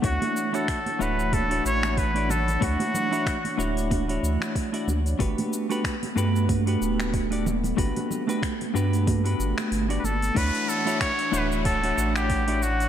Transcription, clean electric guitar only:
X:1
M:4/4
L:1/16
Q:"Swing 16ths" 1/4=93
K:D
V:1 name="Clean electric guitar"
[A,DEFc]3 [A,DEFc]2 z [A,DEFc]3 [A,DEFc]4 [A,DEFd] z2 | [A,DEFc]3 [A,DEFc]2 z [A,DEFc]3 [A,DEFc]4 [A,DEFd] z2 | [A,DFGB]3 [A,DFGB]2 z [A,DFGB]3 [A,DFGB]4 [A,DFGd] z2 | [A,DFGB]3 [A,DFGB]2 z [A,DFGB]3 [A,DFGB]4 [A,DFGd] z2 |
[A,DEFc]3 [A,DEFc]2 z [A,DEFc]3 [A,DEFc]4 [A,DEFd] z2 |]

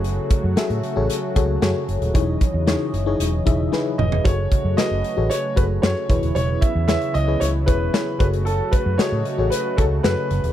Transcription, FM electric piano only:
X:1
M:4/4
L:1/16
Q:1/4=114
K:F#dor
V:1 name="FM electric piano"
[FGAc]3 z [FGAe]2 z [FGAc]2 z [FGAc]2 [FGAc]3 z | [DEGc]3 z [DEGc]2 z [DEGc]2 z [DEGe]2 [DEGB]3 z | [FGAc]3 z [FGAB]2 z [FGAc]2 z [FGAc]2 [FGAc]2 [EGBc]2- | [EGBc]3 z [EGBc]2 z [EGBc]2 z [EGBc]2 [EGBc]2 [FGAc]2- |
[FGAc]3 z [FGAd]2 z [FGAc]2 z [FGAc]2 [FGAB]3 z |]
V:2 name="FM electric piano" clef=bass
z16 | E,6 z8 z2 | z12 z2 E,2- | E,4 z12 |
z16 |]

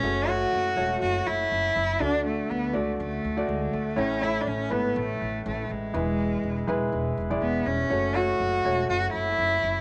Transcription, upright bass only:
X:1
M:4/4
L:1/8
Q:"Swing 16ths" 1/4=122
K:F#m
V:1 name="Upright bass" clef=bass
F,,,2 F,,, E,,, F,,, F,,, F,,, F,,, | D,,2 D,, C,, D,, D,, D,, D,, | A,,,2 A,,, G,,, A,,, A,,, A,,, A,,, | E,,,2 E,,, E,,, E,,, E,,, E,,, E,,, |
F,,,2 F,,, E,,, F,,, F,,, F,,, F,,, |]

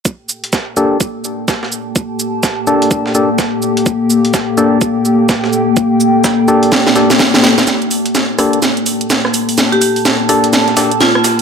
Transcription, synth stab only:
X:1
M:4/4
L:1/16
Q:"Swing 16ths" 1/4=126
K:Gm
V:1 name="Synth stab"
z6 [B,DGA]2 z8 | z6 [B,DGA]4 [B,DGA] z4 z | z6 [B,DGA]2 z8 | z6 [B,DGA]4 [B,DGA] z4 z |
z6 [B,DGA]2 z8 | z6 [B,DGA]4 [B,DGA] z4 z |]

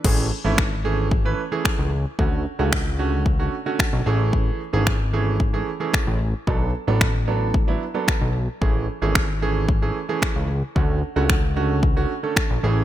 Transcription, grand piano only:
X:1
M:4/4
L:1/16
Q:1/4=112
K:A
V:1 name="Grand piano"
[E,A,CG]2 z [E,A,CE]2 z [E,A,CG]2 z [E,A,CB] z [E,A,CG]3 z2 | [D,A,CF]2 z [D,A,CF]2 z [D,A,CF]2 z [D,A,CF] z [D,A,CF]3 [E,A,CG]2- | [E,A,CG]2 z [E,A,CG]2 z [E,A,CG]2 z [E,A,CG] z [E,A,CG]3 z2 | [F,B,DA]2 z [F,B,DA]2 z [F,B,DA]2 z [F,B,DE] z [F,B,DA]3 z2 |
[E,A,CG]2 z [E,A,CG]2 z [E,A,CG]2 z [E,A,CG] z [E,A,CG]3 z2 | [D,A,CF]2 z [D,A,CF]2 z [D,A,CF]2 z [D,A,CF] z [D,A,CA]3 [E,A,CG]2 |]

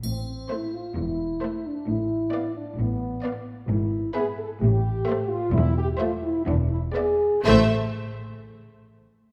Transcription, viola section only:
X:1
M:4/4
L:1/8
Q:1/4=130
K:Am
V:1 name="Viola section"
z2 A,2 z2 A,2 | z2 B,2 z2 B,2 | z2 B,2 z2 A,2 | z2 A,2 z2 B,2 |
A, z6 z |]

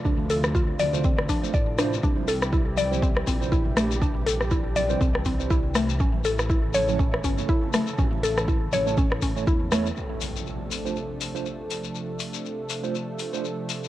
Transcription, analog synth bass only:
X:1
M:4/4
L:1/8
Q:"Swing 16ths" 1/4=121
K:Dm
V:1 name="Analog synth bass" clef=bass
D,,3 D,,2 F,, A,,,2 | C,,4- C,, B,,,3- | B,,,4 C,,4 | A,,,4- A,,, G,,, z2 |
A,,,3 A,,,3 E,,,2 | z8 | z8 |]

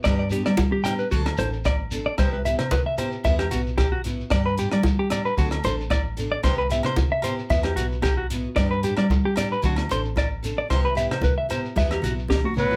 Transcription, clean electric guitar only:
X:1
M:4/4
L:1/16
Q:1/4=113
K:G
V:1 name="Clean electric guitar"
d d G d z G g B F z c z d z2 d | c B e c B e c z e G F z G F z2 | d B G d z G d B F z c z d z2 d | c B e c z e c z e G F z G F z2 |
d B G d z G d B F z c z d z2 d | c B e c B e c z e G F z G F z2 |]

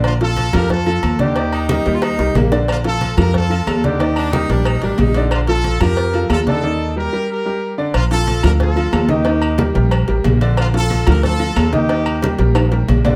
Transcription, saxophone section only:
X:1
M:4/4
L:1/16
Q:1/4=182
K:Bb
V:1 name="Saxophone section"
z16 | z2 E2 E3 F E4 B,3 z | z16 | z2 D2 E2 D2 E2 D2 E3 z |
z16 | z16 | z16 | z16 |
z16 | z16 |]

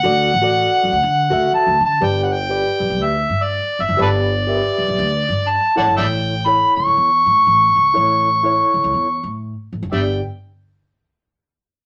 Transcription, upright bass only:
X:1
M:4/4
L:1/16
Q:"Swing" 1/4=121
K:G
V:1 name="Upright bass" clef=bass
D,,2 A,,,3 z F,, D,, D,2 D,,2 z D,, D,2 | G,,,4- G,,, z B,,, B,,, D,,2 G,,3 z G,,, F,,, | G,,,4- G,,, z B,,, B,,, D,,2 G,,3 z A,,, G,,, | A,,,4- A,,, z ^C,, C,, E,,2 A,,2 A,,,2 C,,2 |
A,,,4- A,,, z ^C,, C,, E,,2 A,,3 z A,,, F,,, | G,,,2 z12 z2 |]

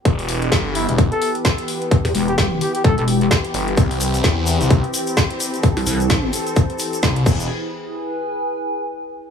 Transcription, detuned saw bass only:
X:1
M:4/4
L:1/16
Q:"Swing 16ths" 1/4=129
K:Em
V:1 name="Detuned saw bass" clef=bass
E,,,4 G,,,3 E,,,2 z6 z | z12 z2 G,,,2 | C,,4 E,,3 C,,2 z6 z | z12 C,,2 E,,,2 |
z16 |]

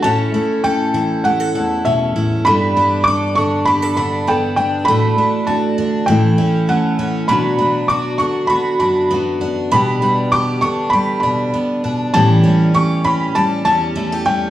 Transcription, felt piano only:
X:1
M:4/4
L:1/16
Q:1/4=99
K:Amix
V:1 name="Felt piano"
a4 g4 f4 e3 z | b4 d'2 c'2 b2 b2 g2 g2 | b4 a4 g4 f3 z | b4 d'2 c'2 b2 b2 z4 |
b4 d'2 c'2 b2 b2 z4 | a4 c'2 b2 a2 a4 g2 |]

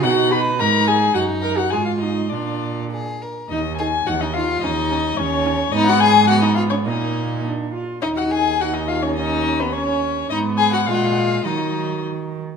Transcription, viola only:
X:1
M:2/4
L:1/16
Q:1/4=105
K:Ebm
V:1 name="Viola"
^F2 =B2 _B2 A2 | G2 B G A F E2 | =D4 z4 | E2 E2 E2 E2 |
D2 D2 D2 D2 | C4 C4 | B,4 =D2 F2 | E4 E4 |
^C4 C4 | C4 A,4 | G,6 z2 |]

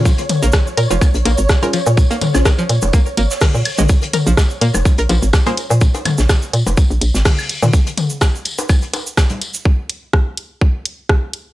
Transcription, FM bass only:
X:1
M:4/4
L:1/16
Q:"Swing 16ths" 1/4=125
K:Bbm
V:1 name="FM bass" clef=bass
z3 B,,, z2 B,, F,,, z B,,, B,,, A,,, z3 B,, | z3 B,,, z2 B,, F,,, z2 A,,, z2 B,, z B,,, | z3 B,,, z2 B,, F,,, z B,,, B,,, A,,, z3 B,, | z3 B,,, z2 B,, F,,, z B,,, B,,, A,,, z3 B,, |
z16 | z16 |]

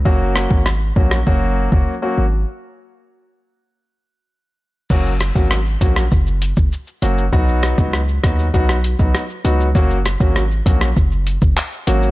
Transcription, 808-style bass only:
X:1
M:4/4
L:1/16
Q:1/4=99
K:F#
V:1 name="808-style bass" clef=bass
F,,,3 G,,,3 A,,,2 F,,,3 F,,, z2 G,,,2 | z16 | F,,,3 G,,,3 A,,,2 F,,,3 F,,, z2 F,,,2 | B,,,3 C,,3 D,,2 B,,,3 B,,, z2 C,,2 |
F,,,3 G,,,3 A,,,2 F,,,3 F,,, z2 G,,,2 |]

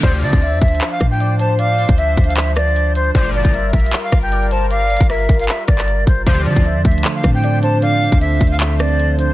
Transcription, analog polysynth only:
X:1
M:4/4
L:1/8
Q:1/4=154
K:Dm
V:1 name="Analog polysynth" clef=bass
[D,,C,F,]2 z6 | z8 | [D,,B,,F,]2 z6 | z8 |
[D,,C,F,]2 z6 | z8 |]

